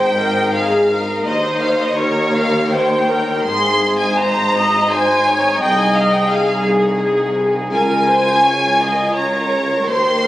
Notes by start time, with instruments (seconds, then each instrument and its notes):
Already playing: double bass section G#1, cello section G#2, violin section D#4 C5 G5, viola section C5
0.19 viola section A#4
0.54 viola section G#4, violin section F5
0.91 viola section A#4
1.24 cello section D#2, double bass section D#2, viola section C5, violin section C#5 D#5
1.61 violin section F5
1.81 violin section D#5
1.96 violin section C#5
2.00 viola section A#4
2.33 violin section F5
2.70 viola section C5, violin section G5
3.10 viola section A#4
3.43 double bass section G#1, violin section C5 C6
3.47 cello section G#2, violin section D#4, viola section G#4
3.98 violin section G#5
4.15 viola section C5, violin section A#5
4.55 viola section D#5
4.90 viola section C5, violin section G#5
5.27 viola section C#5
5.60 double bass section C2, cello section C2, violin section G#4 G5, viola section D#5
5.79 violin section G#5
5.95 violin section F5
6.12 violin section G5
6.30 viola section G#4, violin section F5
7.71 double bass section C#2, cello section C#2, violin section F4 A#4 G#5, viola section A#4
8.09 viola section C5
8.44 viola section C#5
8.80 viola section D#5
9.16 viola section C#5, violin section A#5
9.85 double bass section D#2, cello section D#2, violin section G4 C6, viola section C5
10.24 viola section A#4